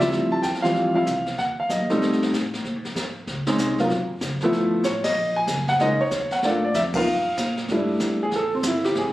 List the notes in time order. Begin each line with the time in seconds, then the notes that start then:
Already playing: C#2
0.00 F3 G3 C4 E4 E5, snare
0.12 D2, brush sweep, kick, snare
0.31 A5, muted upright bass stroke
0.42 E2 G5, kick, snare, hi-hat pedal
0.54 snare
0.62 E3 F3 G3 C4 F5, snare
0.75 A1, brush sweep, kick, snare
0.94 F3 G3 C4 E4 F5
1.06 C2, kick, snare, hi-hat pedal
1.26 snare
1.37 D#2 F#5, brush sweep, kick, snare
1.60 F5
1.69 F#2 D#5, kick, snare, hi-hat pedal
1.79 D#2
1.90 C2 G3 A3 C4 D#4, snare
2.01 F2, brush sweep, kick, snare
2.12 snare
2.23 snare
2.33 A2, kick, snare, hi-hat pedal
2.53 snare
2.64 A#2, brush sweep, kick, snare
2.76 G#2
2.85 F2, snare
2.95 G#2, kick, snare, hi-hat pedal
3.27 C#2, brush sweep, kick, snare
3.47 G#3 C4 C#4 D#4, snare
3.58 C2, kick, snare, hi-hat pedal
3.78 F#3 A#3 B3 F4, snare
3.89 G#1, brush sweep, kick, snare
4.21 F#1, kick, snare, hi-hat pedal
4.40 F3 A3 B3 E4, muted upright bass stroke, snare
4.52 G1, brush sweep, kick, snare
4.84 A1 C#5, kick, snare, hi-hat pedal
5.04 D#5, snare, ride
5.15 A#1, brush sweep
5.36 G#5
5.47 F#1, kick, snare, hi-hat pedal
5.68 F#5, snare
5.79 C#2 G#3 A#3 C#4 D#4 D#5, brush sweep, kick, snare
6.01 C#5
6.11 D#2, kick, snare, hi-hat pedal
6.31 F#5, snare
6.42 G2 A3 A#3 D4 F4 D5, brush sweep, kick, snare
6.64 D5
6.74 F2 E5, kick, snare, hi-hat pedal
6.94 A#3 B3 D#4 F4 F5, kick, ride
7.06 G2, brush sweep
7.37 A#2, kick, snare, hi-hat pedal
7.57 snare
7.68 G2 G3 A3 D4, brush sweep, kick, snare
7.72 E4
8.00 E2, kick, snare, hi-hat pedal
8.23 G#4
8.31 A1, brush sweep, kick, snare
8.36 A4
8.54 C4
8.63 G1, kick, snare, hi-hat pedal
8.67 E4
8.84 G4, snare
8.95 G#1 G#4, brush sweep, kick, snare